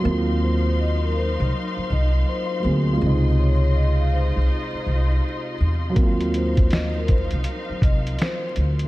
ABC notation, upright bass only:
X:1
M:4/4
L:1/16
Q:"Swing 16ths" 1/4=81
K:Ebdor
V:1 name="Upright bass" clef=bass
E,,6- E,, C,, z2 C,,2 z2 =D,,2 | D,,6- D,, C,, z2 C,,2 z2 _F,,2 | E,,6- E,, C,, z2 C,,2 z2 =D,,2 |]